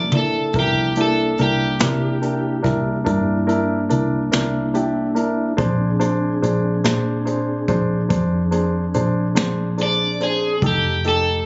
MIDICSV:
0, 0, Header, 1, 6, 480
1, 0, Start_track
1, 0, Tempo, 839161
1, 313, Time_signature, 12, 3, 24, 8
1, 6553, End_track
2, 0, Start_track
2, 0, Title_t, "Overdriven electric guitar"
2, 0, Program_c, 0, 29
2, 0, Note_on_c, 0, 74, 68
2, 74, Note_off_c, 0, 74, 0
2, 96, Note_on_c, 0, 69, 61
2, 318, Note_off_c, 0, 69, 0
2, 339, Note_on_c, 0, 67, 89
2, 560, Note_off_c, 0, 67, 0
2, 581, Note_on_c, 0, 69, 62
2, 801, Note_off_c, 0, 69, 0
2, 813, Note_on_c, 0, 67, 67
2, 2222, Note_off_c, 0, 67, 0
2, 5621, Note_on_c, 0, 74, 92
2, 5841, Note_off_c, 0, 74, 0
2, 5853, Note_on_c, 0, 68, 65
2, 6077, Note_off_c, 0, 68, 0
2, 6102, Note_on_c, 0, 67, 77
2, 6322, Note_off_c, 0, 67, 0
2, 6340, Note_on_c, 0, 69, 78
2, 6553, Note_off_c, 0, 69, 0
2, 6553, End_track
3, 0, Start_track
3, 0, Title_t, "Upright piano"
3, 0, Program_c, 1, 0
3, 75, Note_on_c, 1, 64, 38
3, 76, Note_on_c, 1, 58, 45
3, 76, Note_on_c, 1, 62, 41
3, 254, Note_off_c, 1, 58, 0
3, 254, Note_off_c, 1, 64, 0
3, 255, Note_off_c, 1, 62, 0
3, 314, Note_on_c, 1, 62, 47
3, 317, Note_on_c, 1, 64, 47
3, 317, Note_on_c, 1, 70, 59
3, 494, Note_off_c, 1, 62, 0
3, 496, Note_off_c, 1, 64, 0
3, 496, Note_off_c, 1, 70, 0
3, 553, Note_on_c, 1, 64, 51
3, 555, Note_on_c, 1, 58, 55
3, 555, Note_on_c, 1, 62, 47
3, 733, Note_off_c, 1, 64, 0
3, 735, Note_off_c, 1, 58, 0
3, 735, Note_off_c, 1, 62, 0
3, 795, Note_on_c, 1, 62, 43
3, 796, Note_on_c, 1, 70, 53
3, 798, Note_on_c, 1, 64, 42
3, 975, Note_off_c, 1, 62, 0
3, 975, Note_off_c, 1, 70, 0
3, 976, Note_off_c, 1, 64, 0
3, 1029, Note_on_c, 1, 64, 47
3, 1030, Note_on_c, 1, 62, 50
3, 1036, Note_on_c, 1, 70, 57
3, 1212, Note_off_c, 1, 62, 0
3, 1212, Note_off_c, 1, 64, 0
3, 1215, Note_off_c, 1, 70, 0
3, 1268, Note_on_c, 1, 62, 43
3, 1269, Note_on_c, 1, 64, 38
3, 1271, Note_on_c, 1, 70, 50
3, 1452, Note_off_c, 1, 62, 0
3, 1452, Note_off_c, 1, 64, 0
3, 1453, Note_off_c, 1, 70, 0
3, 1501, Note_on_c, 1, 62, 59
3, 1503, Note_on_c, 1, 64, 57
3, 1507, Note_on_c, 1, 70, 66
3, 1688, Note_off_c, 1, 62, 0
3, 1689, Note_off_c, 1, 64, 0
3, 1691, Note_off_c, 1, 70, 0
3, 1743, Note_on_c, 1, 62, 65
3, 1746, Note_on_c, 1, 64, 53
3, 1749, Note_on_c, 1, 70, 65
3, 1929, Note_off_c, 1, 62, 0
3, 1931, Note_off_c, 1, 64, 0
3, 1932, Note_off_c, 1, 70, 0
3, 1983, Note_on_c, 1, 62, 59
3, 1984, Note_on_c, 1, 64, 58
3, 1985, Note_on_c, 1, 70, 66
3, 2169, Note_off_c, 1, 62, 0
3, 2170, Note_off_c, 1, 64, 0
3, 2171, Note_off_c, 1, 70, 0
3, 2227, Note_on_c, 1, 62, 57
3, 2227, Note_on_c, 1, 64, 49
3, 2228, Note_on_c, 1, 70, 58
3, 2411, Note_off_c, 1, 64, 0
3, 2412, Note_off_c, 1, 62, 0
3, 2412, Note_off_c, 1, 70, 0
3, 2469, Note_on_c, 1, 62, 60
3, 2469, Note_on_c, 1, 70, 63
3, 2470, Note_on_c, 1, 64, 48
3, 2652, Note_off_c, 1, 62, 0
3, 2652, Note_off_c, 1, 70, 0
3, 2653, Note_off_c, 1, 64, 0
3, 2711, Note_on_c, 1, 62, 58
3, 2711, Note_on_c, 1, 64, 55
3, 2716, Note_on_c, 1, 67, 70
3, 2893, Note_off_c, 1, 62, 0
3, 2894, Note_off_c, 1, 64, 0
3, 2896, Note_off_c, 1, 67, 0
3, 2944, Note_on_c, 1, 62, 50
3, 2944, Note_on_c, 1, 64, 50
3, 2947, Note_on_c, 1, 70, 58
3, 3130, Note_off_c, 1, 62, 0
3, 3130, Note_off_c, 1, 64, 0
3, 3132, Note_off_c, 1, 70, 0
3, 3185, Note_on_c, 1, 62, 60
3, 3187, Note_on_c, 1, 68, 56
3, 3191, Note_on_c, 1, 72, 71
3, 3371, Note_off_c, 1, 62, 0
3, 3372, Note_off_c, 1, 68, 0
3, 3374, Note_off_c, 1, 72, 0
3, 3429, Note_on_c, 1, 68, 56
3, 3430, Note_on_c, 1, 62, 65
3, 3430, Note_on_c, 1, 72, 72
3, 3613, Note_off_c, 1, 62, 0
3, 3613, Note_off_c, 1, 68, 0
3, 3613, Note_off_c, 1, 72, 0
3, 3674, Note_on_c, 1, 68, 53
3, 3674, Note_on_c, 1, 72, 66
3, 3675, Note_on_c, 1, 62, 60
3, 3855, Note_off_c, 1, 68, 0
3, 3855, Note_off_c, 1, 72, 0
3, 3856, Note_off_c, 1, 62, 0
3, 3913, Note_on_c, 1, 68, 63
3, 3915, Note_on_c, 1, 62, 63
3, 3915, Note_on_c, 1, 72, 69
3, 4095, Note_off_c, 1, 68, 0
3, 4096, Note_off_c, 1, 62, 0
3, 4096, Note_off_c, 1, 72, 0
3, 4149, Note_on_c, 1, 62, 47
3, 4149, Note_on_c, 1, 72, 62
3, 4151, Note_on_c, 1, 68, 56
3, 4333, Note_off_c, 1, 62, 0
3, 4333, Note_off_c, 1, 72, 0
3, 4334, Note_off_c, 1, 68, 0
3, 4396, Note_on_c, 1, 72, 73
3, 4397, Note_on_c, 1, 62, 59
3, 4397, Note_on_c, 1, 68, 58
3, 4576, Note_off_c, 1, 72, 0
3, 4577, Note_off_c, 1, 62, 0
3, 4577, Note_off_c, 1, 68, 0
3, 4627, Note_on_c, 1, 62, 59
3, 4632, Note_on_c, 1, 68, 52
3, 4633, Note_on_c, 1, 72, 62
3, 4812, Note_off_c, 1, 62, 0
3, 4814, Note_off_c, 1, 68, 0
3, 4815, Note_off_c, 1, 72, 0
3, 4868, Note_on_c, 1, 62, 58
3, 4871, Note_on_c, 1, 72, 59
3, 4873, Note_on_c, 1, 68, 57
3, 5052, Note_off_c, 1, 62, 0
3, 5054, Note_off_c, 1, 72, 0
3, 5055, Note_off_c, 1, 68, 0
3, 5116, Note_on_c, 1, 68, 53
3, 5116, Note_on_c, 1, 72, 64
3, 5117, Note_on_c, 1, 62, 57
3, 5296, Note_off_c, 1, 62, 0
3, 5296, Note_off_c, 1, 68, 0
3, 5296, Note_off_c, 1, 72, 0
3, 5348, Note_on_c, 1, 62, 57
3, 5351, Note_on_c, 1, 68, 56
3, 5353, Note_on_c, 1, 72, 65
3, 5532, Note_off_c, 1, 62, 0
3, 5533, Note_off_c, 1, 68, 0
3, 5534, Note_off_c, 1, 72, 0
3, 5592, Note_on_c, 1, 62, 54
3, 5595, Note_on_c, 1, 68, 46
3, 5601, Note_on_c, 1, 72, 50
3, 5774, Note_off_c, 1, 62, 0
3, 5775, Note_off_c, 1, 68, 0
3, 5778, Note_off_c, 1, 72, 0
3, 5837, Note_on_c, 1, 62, 41
3, 5838, Note_on_c, 1, 68, 47
3, 5838, Note_on_c, 1, 72, 51
3, 6016, Note_off_c, 1, 62, 0
3, 6017, Note_off_c, 1, 68, 0
3, 6017, Note_off_c, 1, 72, 0
3, 6079, Note_on_c, 1, 67, 58
3, 6080, Note_on_c, 1, 63, 55
3, 6082, Note_on_c, 1, 69, 60
3, 6257, Note_off_c, 1, 63, 0
3, 6257, Note_off_c, 1, 67, 0
3, 6258, Note_off_c, 1, 69, 0
3, 6319, Note_on_c, 1, 63, 53
3, 6321, Note_on_c, 1, 69, 63
3, 6324, Note_on_c, 1, 67, 52
3, 6497, Note_off_c, 1, 63, 0
3, 6498, Note_off_c, 1, 69, 0
3, 6499, Note_off_c, 1, 67, 0
3, 6553, End_track
4, 0, Start_track
4, 0, Title_t, "Tonewheel organ"
4, 0, Program_c, 2, 16
4, 0, Note_on_c, 2, 58, 58
4, 0, Note_on_c, 2, 62, 52
4, 0, Note_on_c, 2, 64, 57
4, 290, Note_off_c, 2, 58, 0
4, 290, Note_off_c, 2, 64, 0
4, 291, Note_off_c, 2, 62, 0
4, 308, Note_on_c, 2, 64, 51
4, 310, Note_on_c, 2, 53, 56
4, 310, Note_on_c, 2, 59, 51
4, 539, Note_off_c, 2, 64, 0
4, 539, Note_on_c, 2, 58, 59
4, 545, Note_on_c, 2, 64, 52
4, 548, Note_on_c, 2, 62, 54
4, 552, Note_off_c, 2, 53, 0
4, 552, Note_off_c, 2, 59, 0
4, 3166, Note_off_c, 2, 58, 0
4, 3169, Note_off_c, 2, 64, 0
4, 3171, Note_off_c, 2, 62, 0
4, 3187, Note_on_c, 2, 62, 55
4, 3188, Note_on_c, 2, 60, 62
4, 3190, Note_on_c, 2, 68, 56
4, 6048, Note_off_c, 2, 60, 0
4, 6048, Note_off_c, 2, 62, 0
4, 6050, Note_off_c, 2, 68, 0
4, 6085, Note_on_c, 2, 57, 64
4, 6086, Note_on_c, 2, 63, 54
4, 6087, Note_on_c, 2, 67, 61
4, 6553, Note_off_c, 2, 57, 0
4, 6553, Note_off_c, 2, 63, 0
4, 6553, Note_off_c, 2, 67, 0
4, 6553, End_track
5, 0, Start_track
5, 0, Title_t, "Fingered electric bass"
5, 0, Program_c, 3, 33
5, 0, Note_on_c, 3, 36, 80
5, 293, Note_off_c, 3, 36, 0
5, 311, Note_on_c, 3, 36, 82
5, 770, Note_off_c, 3, 36, 0
5, 798, Note_on_c, 3, 36, 76
5, 1017, Note_off_c, 3, 36, 0
5, 1039, Note_on_c, 3, 48, 71
5, 1494, Note_off_c, 3, 48, 0
5, 1513, Note_on_c, 3, 36, 67
5, 1735, Note_off_c, 3, 36, 0
5, 1756, Note_on_c, 3, 43, 73
5, 2213, Note_off_c, 3, 43, 0
5, 2238, Note_on_c, 3, 36, 73
5, 2458, Note_off_c, 3, 36, 0
5, 2478, Note_on_c, 3, 36, 81
5, 3175, Note_off_c, 3, 36, 0
5, 3198, Note_on_c, 3, 34, 90
5, 3654, Note_off_c, 3, 34, 0
5, 3677, Note_on_c, 3, 34, 80
5, 3897, Note_off_c, 3, 34, 0
5, 3916, Note_on_c, 3, 46, 76
5, 4373, Note_off_c, 3, 46, 0
5, 4397, Note_on_c, 3, 34, 82
5, 4618, Note_off_c, 3, 34, 0
5, 4636, Note_on_c, 3, 41, 80
5, 5093, Note_off_c, 3, 41, 0
5, 5121, Note_on_c, 3, 34, 77
5, 5339, Note_off_c, 3, 34, 0
5, 5358, Note_on_c, 3, 34, 85
5, 6053, Note_off_c, 3, 34, 0
5, 6076, Note_on_c, 3, 29, 99
5, 6532, Note_off_c, 3, 29, 0
5, 6553, End_track
6, 0, Start_track
6, 0, Title_t, "Drums"
6, 67, Note_on_c, 9, 45, 69
6, 125, Note_off_c, 9, 45, 0
6, 304, Note_on_c, 9, 42, 68
6, 309, Note_on_c, 9, 36, 89
6, 361, Note_off_c, 9, 42, 0
6, 366, Note_off_c, 9, 36, 0
6, 546, Note_on_c, 9, 42, 58
6, 604, Note_off_c, 9, 42, 0
6, 789, Note_on_c, 9, 42, 53
6, 846, Note_off_c, 9, 42, 0
6, 1026, Note_on_c, 9, 42, 64
6, 1032, Note_on_c, 9, 38, 101
6, 1083, Note_off_c, 9, 42, 0
6, 1090, Note_off_c, 9, 38, 0
6, 1273, Note_on_c, 9, 42, 51
6, 1330, Note_off_c, 9, 42, 0
6, 1512, Note_on_c, 9, 36, 63
6, 1513, Note_on_c, 9, 42, 53
6, 1519, Note_on_c, 9, 38, 28
6, 1569, Note_off_c, 9, 36, 0
6, 1570, Note_off_c, 9, 42, 0
6, 1576, Note_off_c, 9, 38, 0
6, 1753, Note_on_c, 9, 36, 73
6, 1754, Note_on_c, 9, 42, 73
6, 1810, Note_off_c, 9, 36, 0
6, 1811, Note_off_c, 9, 42, 0
6, 1995, Note_on_c, 9, 42, 50
6, 2052, Note_off_c, 9, 42, 0
6, 2233, Note_on_c, 9, 42, 55
6, 2290, Note_off_c, 9, 42, 0
6, 2472, Note_on_c, 9, 42, 71
6, 2479, Note_on_c, 9, 38, 98
6, 2529, Note_off_c, 9, 42, 0
6, 2536, Note_off_c, 9, 38, 0
6, 2714, Note_on_c, 9, 42, 59
6, 2771, Note_off_c, 9, 42, 0
6, 2952, Note_on_c, 9, 42, 49
6, 3010, Note_off_c, 9, 42, 0
6, 3194, Note_on_c, 9, 36, 84
6, 3195, Note_on_c, 9, 42, 66
6, 3251, Note_off_c, 9, 36, 0
6, 3253, Note_off_c, 9, 42, 0
6, 3436, Note_on_c, 9, 42, 55
6, 3493, Note_off_c, 9, 42, 0
6, 3680, Note_on_c, 9, 42, 50
6, 3737, Note_off_c, 9, 42, 0
6, 3915, Note_on_c, 9, 42, 77
6, 3921, Note_on_c, 9, 38, 88
6, 3972, Note_off_c, 9, 42, 0
6, 3978, Note_off_c, 9, 38, 0
6, 4158, Note_on_c, 9, 42, 58
6, 4215, Note_off_c, 9, 42, 0
6, 4393, Note_on_c, 9, 42, 55
6, 4394, Note_on_c, 9, 36, 64
6, 4451, Note_off_c, 9, 42, 0
6, 4452, Note_off_c, 9, 36, 0
6, 4635, Note_on_c, 9, 36, 78
6, 4636, Note_on_c, 9, 42, 78
6, 4692, Note_off_c, 9, 36, 0
6, 4694, Note_off_c, 9, 42, 0
6, 4874, Note_on_c, 9, 42, 60
6, 4931, Note_off_c, 9, 42, 0
6, 5115, Note_on_c, 9, 42, 61
6, 5172, Note_off_c, 9, 42, 0
6, 5354, Note_on_c, 9, 42, 72
6, 5360, Note_on_c, 9, 38, 88
6, 5411, Note_off_c, 9, 42, 0
6, 5417, Note_off_c, 9, 38, 0
6, 5595, Note_on_c, 9, 42, 56
6, 5652, Note_off_c, 9, 42, 0
6, 5837, Note_on_c, 9, 42, 51
6, 5895, Note_off_c, 9, 42, 0
6, 6076, Note_on_c, 9, 36, 92
6, 6077, Note_on_c, 9, 42, 62
6, 6133, Note_off_c, 9, 36, 0
6, 6134, Note_off_c, 9, 42, 0
6, 6317, Note_on_c, 9, 42, 49
6, 6374, Note_off_c, 9, 42, 0
6, 6553, End_track
0, 0, End_of_file